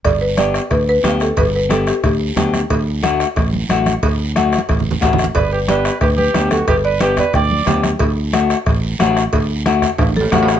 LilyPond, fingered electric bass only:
\new Staff \with { instrumentName = "Fingered electric bass" } { \clef bass \time 4/4 \key g \major \tempo 4 = 181 g,,2 d,4 d,4 | g,,2 d,4 d,4 | d,2 a,,4 a,,4 | d,2 a,,4 a,,4 |
g,,2 d,4 d,4 | g,,2 d,4 d,4 | d,2 a,,4 a,,4 | d,2 a,,4 a,,4 | }